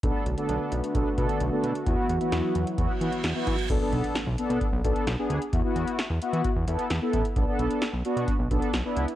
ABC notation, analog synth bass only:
X:1
M:4/4
L:1/16
Q:1/4=131
K:Bm
V:1 name="Analog synth bass" clef=bass
B,,, z B,,, z B,,, z B,,, z B,,, z B,, z B,,, z B,, z | E,, z E,, z E,, z E,, z E,, z E, z E,, z E, z | B,,, z B,,, z2 B,,, z B,, z B,,, B,,, z B,,, z D,, z | E,, z E,, z2 E,, z E, z E,, E,, z E,, z A,,, z |
B,,, z B,,, z2 B,,, z B,, z B,,, B,,, z B,,, z C,, z |]